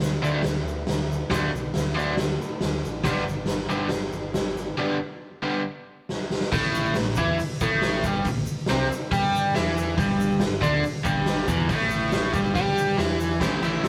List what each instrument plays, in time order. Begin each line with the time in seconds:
0.00 picked electric bass D2, snare, open hi-hat, shaker
0.22 picked electric bass D2, overdriven electric guitar D3 F#3 A3 D4, shaker
0.42 picked electric bass D2, snare, open hi-hat, shaker
0.63 picked electric bass D2
0.68 shaker
0.86 picked electric bass D2, snare, open hi-hat
0.91 shaker
1.12 shaker
1.30 picked electric bass D2, overdriven electric guitar D3 F#3 A3 D4, kick, snare, open hi-hat
1.34 shaker
1.53 picked electric bass B1, shaker
1.74 picked electric bass D2, snare, open hi-hat, shaker
1.95 picked electric bass D2, overdriven electric guitar D3 F#3 A3 D4, shaker
2.17 picked electric bass D2, snare, open hi-hat, shaker
2.40 picked electric bass A2, shaker
2.61 picked electric bass D2, snare, open hi-hat, shaker
2.85 picked electric bass A1, shaker
3.04 picked electric bass G1, overdriven electric guitar G2 D3 G3 B3 D4, kick, snare, open hi-hat, shaker
3.27 picked electric bass G1, shaker
3.46 picked electric bass G1, snare, open hi-hat, shaker
3.69 picked electric bass G1, overdriven electric guitar G2 D3 G3 B3 D4, shaker
3.89 picked electric bass G1, snare, open hi-hat, shaker
4.13 picked electric bass G1, shaker
4.34 picked electric bass G#1, snare, open hi-hat, shaker
4.57 shaker
4.78 overdriven electric guitar G2 D3 G3 B3 D4
5.43 overdriven electric guitar G2 D3 G3 B3 D4
6.09 snare
6.30 snare
6.41 snare
6.52 picked electric bass A1, overdriven electric guitar A2 A3, kick, crash, shaker
6.75 shaker
6.86 shaker
6.94 overdriven electric guitar A2, snare, open hi-hat, shaker
6.98 picked electric bass A1
7.15 picked electric bass E2, overdriven electric guitar E3 E4, kick, shaker
7.39 muted picked electric bass stroke, muted overdriven electric guitar stroke, open hi-hat, shaker
7.60 picked electric bass A1, overdriven electric guitar A2 A3, kick, shaker
7.82 snare, open hi-hat, shaker
8.04 picked electric bass G1, overdriven electric guitar G2 G3, kick, shaker
8.25 picked electric bass A1, overdriven electric guitar A2, kick, open hi-hat, shaker
8.46 shaker
8.60 shaker
8.66 overdriven electric guitar C3 C4, snare, open hi-hat, shaker
8.72 picked electric bass C2
8.91 muted overdriven electric guitar stroke, muted picked electric bass stroke, shaker
9.11 picked electric bass G2, overdriven electric guitar G3 G4, kick, open hi-hat, shaker
9.36 shaker
9.54 picked electric bass E2, overdriven electric guitar E3 E4, snare, open hi-hat, shaker
9.77 shaker
9.97 picked electric bass G1, overdriven electric guitar G2 G3, kick, open hi-hat, shaker
10.20 shaker
10.40 picked electric bass G1, overdriven electric guitar G2, snare, open hi-hat, shaker
10.62 picked electric bass D2, overdriven electric guitar D3 D4, kick, shaker
10.83 muted picked electric bass stroke, muted overdriven electric guitar stroke, open hi-hat, shaker
11.04 picked electric bass G1, overdriven electric guitar G2 G3, kick, shaker
11.26 snare, open hi-hat, shaker
11.48 picked electric bass E1, overdriven electric guitar E2 E3, kick, shaker
11.69 picked electric bass A1, overdriven electric guitar A2 A3, kick, open hi-hat, shaker
11.90 shaker
12.12 snare, open hi-hat, shaker
12.33 picked electric bass G1, overdriven electric guitar G2 G3, kick, shaker
12.46 shaker
12.54 picked electric bass G2, overdriven electric guitar G3 G4, kick, open hi-hat, shaker
12.78 shaker
12.97 picked electric bass E2, overdriven electric guitar E3 E4, snare, open hi-hat, shaker
13.20 shaker
13.31 shaker
13.40 picked electric bass A1, overdriven electric guitar A2 E3 A3 C#4 E4, kick, snare, ride, shaker
13.61 picked electric bass A1, overdriven electric guitar A2 E3 A3 C#4 E4, lead electric guitar E5, ride, shaker
13.81 picked electric bass A1, lead electric guitar C5, snare, ride